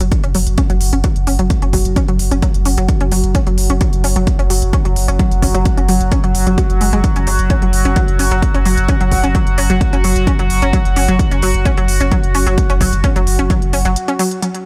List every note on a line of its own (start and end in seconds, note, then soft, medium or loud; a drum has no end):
0.00 0.12 F#1 medium
0.00 14.41 F#3 medium
0.00 0.08 F#3 medium
0.00 14.41 F#4 medium
0.00 closed hi-hat medium
0.12 kick loud
0.12 closed hi-hat loud
0.24 0.34 F#1 medium
0.24 0.28 C#4 medium
0.24 closed hi-hat medium
0.35 0.46 F#1 loud
0.35 0.42 F#3 medium
0.35 open hi-hat loud
0.47 0.58 F#1 medium
0.47 closed hi-hat medium
0.58 0.62 C#4 medium
0.58 kick loud
0.58 closed hi-hat medium
0.70 0.80 F#1 medium
0.70 0.77 F#3 medium
0.70 closed hi-hat medium
0.81 0.92 F#1 loud
0.81 open hi-hat loud
0.93 1.04 F#1 medium
0.93 0.97 C#4 medium
0.93 closed hi-hat medium
1.04 1.12 F#3 medium
1.04 kick loud
1.04 closed hi-hat medium
1.16 1.26 F#1 medium
1.16 closed hi-hat medium
1.27 1.38 F#1 loud
1.27 1.32 C#4 medium
1.27 open hi-hat loud
1.39 1.50 F#1 medium
1.39 1.46 F#3 medium
1.39 closed hi-hat medium
1.50 kick loud
1.50 closed hi-hat medium
1.62 1.73 F#1 medium
1.62 1.66 C#4 medium
1.62 closed hi-hat medium
1.73 1.85 F#1 loud
1.73 1.81 F#3 medium
1.73 kick medium
1.73 open hi-hat loud
1.85 1.96 F#1 medium
1.85 closed hi-hat medium
1.96 2.01 C#4 medium
1.96 kick loud
1.96 closed hi-hat loud
2.08 2.19 F#1 medium
2.08 2.15 F#3 medium
2.08 closed hi-hat medium
2.19 2.31 F#1 loud
2.19 open hi-hat loud
2.31 2.42 F#1 medium
2.31 2.36 C#4 medium
2.31 closed hi-hat medium
2.42 2.50 F#3 medium
2.42 kick loud
2.42 closed hi-hat medium
2.54 2.65 F#1 medium
2.54 closed hi-hat medium
2.65 2.77 F#1 medium
2.65 2.70 C#4 medium
2.65 open hi-hat loud
2.77 2.88 F#1 medium
2.77 2.85 F#3 medium
2.77 closed hi-hat medium
2.89 kick loud
2.89 closed hi-hat loud
3.01 3.11 F#1 medium
3.01 3.05 C#4 medium
3.01 closed hi-hat medium
3.12 3.23 F#1 loud
3.12 3.19 F#3 medium
3.12 open hi-hat loud
3.24 3.35 F#1 medium
3.24 closed hi-hat medium
3.35 3.39 C#4 medium
3.35 kick loud
3.35 closed hi-hat medium
3.47 3.57 F#1 medium
3.47 3.54 F#3 medium
3.47 closed hi-hat medium
3.58 3.69 F#1 loud
3.58 open hi-hat loud
3.70 3.81 F#1 medium
3.70 3.74 C#4 medium
3.70 closed hi-hat medium
3.81 3.89 F#3 medium
3.81 kick loud
3.81 closed hi-hat medium
3.93 4.03 F#1 medium
3.93 closed hi-hat medium
4.04 4.15 F#1 loud
4.04 4.09 C#4 medium
4.04 open hi-hat loud
4.16 4.27 F#1 medium
4.16 4.23 F#3 medium
4.16 closed hi-hat medium
4.27 kick loud
4.27 closed hi-hat medium
4.39 4.50 F#1 medium
4.39 4.43 C#4 medium
4.39 closed hi-hat medium
4.50 4.62 F#1 loud
4.50 4.58 F#3 medium
4.50 open hi-hat loud
4.62 4.73 F#1 medium
4.62 closed hi-hat medium
4.73 4.78 C#4 medium
4.73 kick loud
4.73 closed hi-hat medium
4.85 4.96 F#1 medium
4.85 4.92 F#3 medium
4.85 closed hi-hat medium
4.96 5.08 F#1 loud
4.96 open hi-hat loud
5.08 5.19 F#1 medium
5.08 5.12 C#4 medium
5.08 closed hi-hat medium
5.19 5.27 F#3 medium
5.19 kick loud
5.19 closed hi-hat medium
5.31 5.42 F#1 medium
5.31 closed hi-hat medium
5.42 5.54 F#1 loud
5.42 5.47 C#4 medium
5.42 kick medium
5.42 open hi-hat loud
5.54 5.65 F#1 medium
5.54 5.61 F#3 medium
5.54 closed hi-hat soft
5.65 kick loud
5.65 closed hi-hat medium
5.77 5.88 F#1 medium
5.77 5.82 C#4 medium
5.77 closed hi-hat medium
5.89 6.00 F#1 loud
5.89 5.96 F#3 medium
5.89 open hi-hat loud
6.01 6.11 F#1 medium
6.01 closed hi-hat medium
6.12 6.16 C#4 medium
6.12 kick loud
6.12 closed hi-hat medium
6.24 6.34 F#1 medium
6.24 6.31 F#3 medium
6.24 closed hi-hat medium
6.35 6.46 F#1 loud
6.35 open hi-hat loud
6.47 6.58 F#1 medium
6.47 6.57 F#3 medium
6.47 closed hi-hat soft
6.58 6.65 F#4 medium
6.58 kick loud
6.58 closed hi-hat medium
6.70 6.80 F#1 medium
6.70 closed hi-hat soft
6.81 6.92 F#1 loud
6.81 6.89 G#3 medium
6.81 open hi-hat loud
6.93 7.04 F#1 medium
6.93 7.03 G#3 medium
6.93 closed hi-hat medium
7.04 kick loud
7.04 closed hi-hat medium
7.16 7.26 F#1 medium
7.16 7.20 C#4 medium
7.16 closed hi-hat medium
7.27 7.38 F#1 loud
7.27 7.35 F#3 medium
7.27 open hi-hat loud
7.39 7.50 F#1 medium
7.39 closed hi-hat medium
7.50 7.55 C#4 medium
7.50 kick loud
7.50 closed hi-hat medium
7.62 7.72 F#1 medium
7.62 7.69 F#3 medium
7.62 closed hi-hat soft
7.73 7.85 F#1 loud
7.73 open hi-hat loud
7.85 7.96 F#1 medium
7.85 7.89 C#4 medium
7.85 closed hi-hat medium
7.96 8.04 F#3 medium
7.96 kick loud
7.96 closed hi-hat medium
8.08 8.19 F#1 medium
8.08 closed hi-hat soft
8.19 8.31 F#1 loud
8.19 8.24 C#4 medium
8.19 open hi-hat loud
8.31 8.42 F#1 medium
8.31 8.38 F#3 medium
8.31 closed hi-hat medium
8.42 kick loud
8.42 closed hi-hat medium
8.54 8.65 F#1 medium
8.54 8.59 C#4 medium
8.54 closed hi-hat medium
8.65 8.77 F#1 medium
8.65 8.73 F#3 medium
8.65 open hi-hat loud
8.77 8.88 F#1 medium
8.77 closed hi-hat medium
8.88 8.93 C#4 medium
8.88 kick loud
8.88 closed hi-hat medium
9.01 9.11 F#1 medium
9.01 9.08 F#3 medium
9.01 closed hi-hat medium
9.12 9.23 F#1 loud
9.12 kick medium
9.12 open hi-hat loud
9.24 9.35 F#1 medium
9.24 9.28 C#4 medium
9.24 closed hi-hat soft
9.35 9.42 F#3 medium
9.35 kick loud
9.35 closed hi-hat medium
9.47 9.57 F#1 medium
9.47 closed hi-hat soft
9.58 9.69 F#1 loud
9.58 9.62 C#4 medium
9.58 open hi-hat loud
9.70 9.81 F#1 medium
9.70 9.77 F#3 medium
9.70 closed hi-hat soft
9.81 kick loud
9.81 closed hi-hat medium
9.93 10.04 F#1 medium
9.93 9.97 C#4 medium
9.93 closed hi-hat soft
10.04 10.15 F#1 loud
10.04 10.12 F#3 medium
10.04 open hi-hat loud
10.16 10.27 F#1 medium
10.16 closed hi-hat medium
10.27 10.32 C#4 medium
10.27 kick loud
10.27 closed hi-hat medium
10.39 10.50 F#1 medium
10.39 10.46 F#3 medium
10.39 closed hi-hat soft
10.50 10.62 F#1 loud
10.50 open hi-hat loud
10.62 10.73 F#1 medium
10.62 10.66 C#4 medium
10.62 closed hi-hat soft
10.73 10.81 F#3 medium
10.73 kick loud
10.73 closed hi-hat medium
10.85 10.96 F#1 medium
10.85 closed hi-hat medium
10.96 11.08 F#1 loud
10.96 11.01 C#4 medium
10.96 open hi-hat loud
11.08 11.19 F#1 medium
11.08 11.15 F#3 medium
11.08 closed hi-hat medium
11.19 kick loud
11.19 closed hi-hat medium
11.31 11.42 F#1 medium
11.31 11.36 C#4 medium
11.31 closed hi-hat medium
11.42 11.54 F#1 loud
11.42 11.50 F#3 medium
11.42 open hi-hat loud
11.54 11.65 F#1 medium
11.54 closed hi-hat soft
11.65 11.70 C#4 medium
11.65 kick loud
11.65 closed hi-hat medium
11.77 11.88 F#1 medium
11.77 11.84 F#3 medium
11.77 closed hi-hat soft
11.88 12.00 F#1 loud
11.88 open hi-hat loud
12.00 12.11 F#1 medium
12.00 12.05 C#4 medium
12.00 closed hi-hat medium
12.12 12.19 F#3 medium
12.12 kick loud
12.12 closed hi-hat medium
12.24 12.34 F#1 medium
12.24 closed hi-hat medium
12.35 12.46 F#1 medium
12.35 12.39 C#4 medium
12.35 open hi-hat loud
12.47 12.58 F#1 medium
12.47 12.54 F#3 medium
12.47 closed hi-hat medium
12.58 kick loud
12.58 closed hi-hat loud
12.70 12.80 F#1 medium
12.70 12.74 C#4 medium
12.70 closed hi-hat medium
12.81 12.92 F#1 loud
12.81 12.88 F#3 medium
12.81 kick medium
12.81 open hi-hat loud
12.93 13.04 F#1 medium
12.93 closed hi-hat medium
13.04 13.08 C#4 medium
13.04 kick loud
13.04 closed hi-hat loud
13.16 13.26 F#1 medium
13.16 13.23 F#3 medium
13.16 closed hi-hat medium
13.27 13.38 F#1 loud
13.27 open hi-hat loud
13.39 13.50 F#1 medium
13.39 13.43 C#4 medium
13.39 closed hi-hat medium
13.50 13.58 F#3 medium
13.50 kick loud
13.50 closed hi-hat medium
13.62 13.73 F#1 medium
13.62 closed hi-hat medium
13.73 13.85 F#1 loud
13.73 13.78 C#4 medium
13.73 open hi-hat loud
13.85 13.96 F#1 medium
13.85 13.92 F#3 medium
13.85 closed hi-hat medium
13.96 closed hi-hat medium
14.08 14.12 C#4 medium
14.08 closed hi-hat medium
14.19 14.27 F#3 medium
14.19 open hi-hat loud
14.31 closed hi-hat medium
14.42 14.65 F#3 medium
14.42 14.50 F#3 medium
14.42 14.65 F#4 medium
14.42 closed hi-hat medium
14.55 closed hi-hat medium